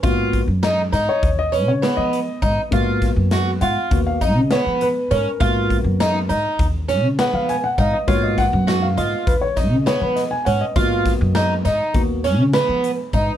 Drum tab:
HH |xxxxxxxxx|xxxxxxxxx|xxxxxxxxx|xxxxxxxxx|
SD |--oo--o--|-oo---o--|--o--oo--|-oo--ooo-|
BD |oo--o---o|oo--oo---|oo--o---o|oo--oo---|

HH |xxxxxxxxx|
SD |-ooo-oo--|
BD |oo--o---o|